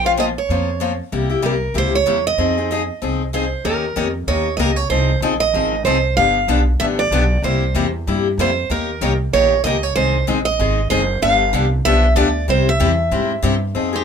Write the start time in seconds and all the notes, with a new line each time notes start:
Already playing: A#1
0.05 C#4 F4 C5 F5
0.17 F3 A#3 C#4 F4 C5 D#5
0.38 C#5
0.49 F2 F3 A#3 C#4 F4 C5
0.80 F3 A#3 C#4 F4 C5
1.12 C2 C3 G3 A#3 E4 G4
1.30 A#3 E4 G4
1.42 C2 C3 G3 A#3 E4 G4 A#4
1.74 C#2 C3 G3 A#3 E4 G4 C5
1.95 C#5
2.06 E2 C3 G3 A#3 E4 G4
2.27 D#5
2.38 F2 F3 C4 D#4 G#4
2.58 C4 D#4 G#4
2.71 F3 C4 D#4 G#4
3.02 C2 F3 C4 D#4 G#4
3.33 F3 C4 D#4 G#4 C5
3.64 D#2 D#3 A#3 C#4 G4 A#4
3.96 F2 D#3 A#3 C#4 G4 A#4
4.27 D#2 D#3 A#3 C#4 G4 A#4 C#5
4.57 C#2 D#3 A#3 C#4 G4 A#4 D#5
4.76 C#5
4.89 C2 F3 C4 D#4 G#4 C5
5.21 A#1 F3 C4 D#4 G#4
5.40 D#5
5.54 G#1 F3 C4 D#4 G#4
5.84 C2 F3 C4 D#4 G#4 C5
6.16 G1 D3 F3 B3 D4 G4 F5
6.48 B1 D3 F3 B3 D4 G4
6.80 A1 D3 F3 B3 D4 G4 E5
6.99 D5
7.11 B1 D3 F3 B3 D4 G4
7.42 C2 C3 G3 A#3 E4 G4 C5
7.74 E2 C3 G3 A#3 E4 G4
8.07 G2 C3 G3 A#3 E4 G4
8.38 F2 C3 G3 A#3 E4 G4 C5
8.70 D#2 D#3 A#3 C#4 G4 A#4
9.01 C2 D#3 A#3 C#4 G4 A#4
9.33 A#1 D#3 A#3 C#4 G4 A#4 C#5
9.64 C#2 D#3 A#3 C#4 G4 A#4 D#5
9.83 C#5
9.96 C2 D#3 G#3 C4 D#4 G#4 C5
10.27 A#1 D#3 G#3 C4 D#4 G#4
10.45 D#5
10.59 G#1 D#3 G#3 C4 D#4 G#4
10.90 F#1 D#3 G#3 C4 D#4 G#4 C5
11.22 G1 D3 F3 B3 D4 G4 F5
11.53 C2 D3 F3 B3 D4 G4
11.85 B1 D3 F3 B3 D4 G4 E5
12.15 D2 D3 F3 B3 D4 G4 D5
12.48 C2 C3 G3 C4 E4 G4 C5
12.69 E5
12.80 E2 C3 G3 C4 E4 G4
13.11 G#2 C3 G3 C4 E4 G4
13.43 G2 C3 G3 C4 E4 G4
13.75 F2 F3 C4 D#4 G#4
13.93 C4 D#4 G4 G#4